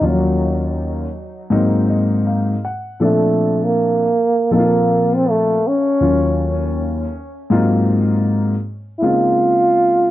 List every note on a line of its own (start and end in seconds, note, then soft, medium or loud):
0.01 1.03 D#2 medium
0.01 0.10 F3 soft
0.01 1.03 A#3 medium
0.01 1.04 C#4 medium
0.01 1.04 F4 medium
0.06 1.16 F#3 medium
0.06 1.07 F#3 medium
1.50 2.53 G#2 medium
1.50 2.53 F#3 medium
1.50 2.53 A#3 medium
1.50 2.53 C4 medium
1.50 2.54 D#4 medium
1.90 2.24 D#5 medium
2.27 2.62 F5 medium
2.65 2.99 F#5 medium
3.00 4.03 A#2 medium
3.00 4.03 F3 medium
3.00 4.03 C4 medium
3.00 4.03 D4 medium
3.00 4.03 A4 medium
3.04 3.66 A3 medium
3.64 4.53 A#3 medium
4.51 5.53 A#2 medium
4.51 5.53 F3 medium
4.51 5.17 A#3 medium
4.51 5.54 C4 medium
4.51 4.60 D#4 medium
4.51 5.53 A4 medium
4.59 5.57 F4 medium
5.15 5.31 C4 medium
5.30 5.69 A3 medium
5.67 6.78 C#4 loud
6.00 7.03 D#2 medium
6.00 7.03 F#3 medium
6.00 7.03 A#3 medium
6.00 7.03 C#4 medium
6.00 7.04 F4 medium
7.50 8.53 G#2 medium
7.50 8.53 F#3 medium
7.50 8.53 A#3 medium
7.50 8.53 C4 medium
7.50 8.53 D#4 medium
7.50 8.54 F4 medium
8.99 10.03 C#3 medium
8.99 10.03 G#3 medium
8.99 10.04 A#3 medium
8.99 9.05 E4 medium
9.03 10.04 C4 medium
9.03 10.04 D#4 medium
9.03 10.04 F4 medium
9.03 10.11 F4 loud